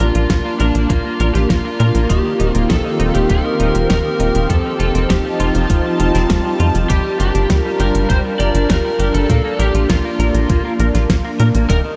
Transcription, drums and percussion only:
0.00 closed hi-hat medium
0.15 closed hi-hat medium
0.30 kick loud
0.30 snare loud
0.30 closed hi-hat medium
0.60 closed hi-hat medium
0.75 closed hi-hat medium
0.90 kick loud
0.90 closed hi-hat medium
1.20 closed hi-hat medium
1.35 snare soft
1.35 closed hi-hat medium
1.50 kick loud
1.50 snare loud
1.50 closed hi-hat medium
1.80 closed hi-hat medium
1.95 closed hi-hat medium
2.10 kick loud
2.10 closed hi-hat medium
2.40 closed hi-hat medium
2.55 closed hi-hat medium
2.70 kick loud
2.70 snare loud
2.70 closed hi-hat medium
3.00 closed hi-hat medium
3.15 closed hi-hat medium
3.30 kick loud
3.30 closed hi-hat medium
3.60 closed hi-hat medium
3.75 closed hi-hat medium
3.90 kick loud
3.90 snare loud
3.90 closed hi-hat medium
4.20 closed hi-hat medium
4.35 closed hi-hat medium
4.50 kick loud
4.50 closed hi-hat medium
4.80 closed hi-hat medium
4.95 closed hi-hat medium
5.10 kick loud
5.10 snare loud
5.10 closed hi-hat medium
5.40 closed hi-hat medium
5.55 closed hi-hat medium
5.70 kick loud
5.70 closed hi-hat medium
6.00 closed hi-hat medium
6.15 snare soft
6.15 closed hi-hat medium
6.30 kick loud
6.30 snare loud
6.30 closed hi-hat medium
6.60 closed hi-hat medium
6.75 closed hi-hat medium
6.90 kick loud
6.90 closed hi-hat medium
7.20 closed hi-hat medium
7.35 closed hi-hat medium
7.50 kick loud
7.50 snare loud
7.50 closed hi-hat medium
7.80 closed hi-hat medium
7.95 closed hi-hat medium
8.10 kick loud
8.10 closed hi-hat medium
8.40 closed hi-hat medium
8.55 closed hi-hat medium
8.70 kick loud
8.70 snare loud
8.70 closed hi-hat loud
9.00 closed hi-hat medium
9.15 closed hi-hat medium
9.30 kick loud
9.30 closed hi-hat loud
9.60 closed hi-hat medium
9.75 closed hi-hat medium
9.90 kick loud
9.90 snare loud
9.90 closed hi-hat medium
10.20 closed hi-hat medium
10.35 closed hi-hat medium
10.50 kick loud
10.50 closed hi-hat medium
10.80 closed hi-hat medium
10.95 snare soft
10.95 closed hi-hat medium
11.10 kick loud
11.10 snare loud
11.10 closed hi-hat medium
11.40 closed hi-hat medium
11.55 closed hi-hat medium
11.70 kick loud
11.70 closed hi-hat medium

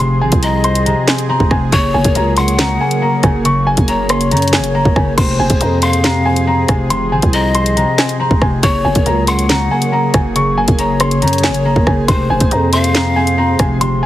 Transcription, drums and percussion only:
0.32 kick loud
0.32 closed hi-hat medium
0.43 closed hi-hat medium
0.64 closed hi-hat medium
0.75 closed hi-hat medium
0.86 closed hi-hat medium
1.08 snare loud
1.08 clap medium
1.18 closed hi-hat medium
1.40 kick loud
1.51 kick loud
1.51 cross-stick loud
1.72 kick loud
1.72 closed hi-hat medium
2.04 kick loud
2.04 closed hi-hat medium
2.15 closed hi-hat medium
2.37 closed hi-hat medium
2.48 closed hi-hat medium
2.59 snare loud
2.59 clap medium
2.91 closed hi-hat medium
3.23 kick loud
3.23 cross-stick loud
3.23 closed hi-hat medium
3.45 closed hi-hat medium
3.77 kick loud
3.77 closed hi-hat medium
3.88 closed hi-hat medium
4.09 cross-stick loud
4.09 closed hi-hat medium
4.21 closed hi-hat medium
4.31 closed hi-hat medium
4.37 closed hi-hat medium
4.42 closed hi-hat medium
4.48 closed hi-hat medium
4.53 snare loud
4.53 clap medium
4.64 closed hi-hat medium
4.85 kick loud
4.96 kick loud
4.96 cross-stick loud
5.18 kick loud
5.18 closed hi-hat medium
5.18 crash loud
5.50 kick loud
5.50 closed hi-hat medium
5.61 closed hi-hat medium
5.82 closed hi-hat medium
5.93 closed hi-hat medium
6.04 snare loud
6.04 clap medium
6.36 closed hi-hat medium
6.68 kick loud
6.68 cross-stick loud
6.68 closed hi-hat medium
6.90 closed hi-hat medium
7.22 kick loud
7.22 closed hi-hat medium
7.33 closed hi-hat medium
7.55 closed hi-hat medium
7.66 closed hi-hat medium
7.77 closed hi-hat medium
7.98 snare loud
7.98 clap medium
8.09 closed hi-hat medium
8.31 kick loud
8.42 kick loud
8.42 cross-stick loud
8.63 kick loud
8.63 closed hi-hat medium
8.95 kick loud
8.95 closed hi-hat medium
9.06 closed hi-hat medium
9.27 closed hi-hat medium
9.39 closed hi-hat medium
9.49 snare loud
9.49 clap medium
9.82 closed hi-hat medium
10.14 kick loud
10.14 cross-stick loud
10.14 closed hi-hat medium
10.36 closed hi-hat medium
10.68 kick loud
10.68 closed hi-hat medium
10.79 closed hi-hat medium
11.00 cross-stick loud
11.00 closed hi-hat medium
11.11 closed hi-hat medium
11.22 closed hi-hat medium
11.28 closed hi-hat medium
11.33 closed hi-hat medium
11.38 closed hi-hat medium
11.44 snare loud
11.44 clap medium
11.54 closed hi-hat medium
11.76 kick loud
11.87 kick loud
11.87 cross-stick loud
12.08 kick loud
12.08 closed hi-hat medium
12.40 kick loud
12.40 closed hi-hat medium
12.51 closed hi-hat medium
12.73 closed hi-hat medium
12.84 closed hi-hat medium
12.95 snare loud
12.95 clap medium
13.27 closed hi-hat medium
13.59 kick loud
13.59 cross-stick loud
13.59 closed hi-hat medium
13.81 closed hi-hat medium

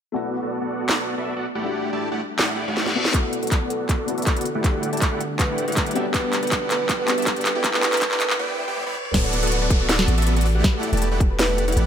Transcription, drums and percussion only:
0.89 snare loud
0.89 clap medium
2.39 snare loud
2.39 clap medium
2.77 snare medium
2.86 snare medium
3.05 snare medium
3.14 kick medium
3.14 clap soft
3.14 closed hi-hat medium
3.33 closed hi-hat medium
3.43 closed hi-hat soft
3.47 closed hi-hat medium
3.51 kick medium
3.51 clap soft
3.51 closed hi-hat medium
3.70 closed hi-hat medium
3.89 kick medium
3.89 clap soft
3.89 closed hi-hat medium
4.08 closed hi-hat medium
4.18 closed hi-hat soft
4.22 closed hi-hat medium
4.27 kick loud
4.27 clap medium
4.27 closed hi-hat medium
4.36 closed hi-hat soft
4.41 closed hi-hat medium
4.45 closed hi-hat medium
4.64 kick loud
4.64 clap medium
4.64 closed hi-hat medium
4.83 closed hi-hat medium
4.93 closed hi-hat soft
4.97 closed hi-hat medium
5.02 kick medium
5.02 clap medium
5.02 closed hi-hat medium
5.21 closed hi-hat medium
5.39 kick medium
5.39 clap medium
5.39 closed hi-hat medium
5.58 closed hi-hat medium
5.68 closed hi-hat soft
5.72 closed hi-hat medium
5.77 kick loud
5.77 clap medium
5.77 closed hi-hat medium
5.86 closed hi-hat soft
5.91 closed hi-hat medium
5.96 closed hi-hat medium
6.14 kick loud
6.14 clap medium
6.14 closed hi-hat medium
6.33 clap medium
6.33 closed hi-hat medium
6.43 closed hi-hat soft
6.47 closed hi-hat medium
6.52 kick loud
6.52 clap medium
6.52 closed hi-hat medium
6.71 clap medium
6.71 closed hi-hat medium
6.89 kick loud
6.89 clap medium
6.89 closed hi-hat medium
7.08 clap medium
7.08 closed hi-hat medium
7.18 closed hi-hat soft
7.22 closed hi-hat medium
7.27 kick loud
7.27 clap medium
7.27 closed hi-hat medium
7.36 closed hi-hat soft
7.41 closed hi-hat medium
7.45 clap medium
7.45 closed hi-hat medium
7.64 kick loud
7.64 clap medium
7.64 closed hi-hat medium
7.74 clap medium
7.83 clap medium
7.83 closed hi-hat medium
7.93 clap medium
7.93 closed hi-hat soft
7.97 closed hi-hat medium
8.02 kick loud
8.02 clap loud
8.02 closed hi-hat medium
8.11 clap medium
8.20 clap loud
8.20 closed hi-hat medium
8.30 clap medium
8.77 high tom medium
8.86 high tom medium
9.05 mid tom medium
9.14 kick loud
9.14 snare medium
9.14 closed hi-hat medium
9.14 crash loud
9.33 closed hi-hat medium
9.43 closed hi-hat medium
9.47 closed hi-hat medium
9.52 closed hi-hat medium
9.70 kick loud
9.70 closed hi-hat medium
9.89 snare loud
9.89 closed hi-hat medium
9.99 snare medium
10.08 closed hi-hat medium
10.18 closed hi-hat medium
10.22 closed hi-hat medium
10.27 closed hi-hat medium
10.36 closed hi-hat medium
10.41 closed hi-hat medium
10.46 open hi-hat medium
10.64 kick loud
10.64 snare medium
10.64 closed hi-hat medium
10.83 closed hi-hat medium
10.93 closed hi-hat medium
10.97 closed hi-hat medium
11.02 closed hi-hat medium
11.20 kick loud
11.20 closed hi-hat medium
11.39 snare loud
11.39 closed hi-hat medium
11.58 closed hi-hat medium
11.68 closed hi-hat medium
11.72 closed hi-hat medium
11.77 closed hi-hat medium

